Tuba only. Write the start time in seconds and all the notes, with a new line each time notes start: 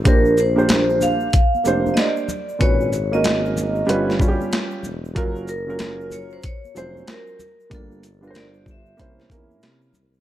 0.06 A#1
1.64 F1
2.61 G#1
3.88 G1
4.84 E1
5.16 F#1
6.75 F1
7.72 G1
9.00 C2
9.30 E2
9.63 C3
9.95 C2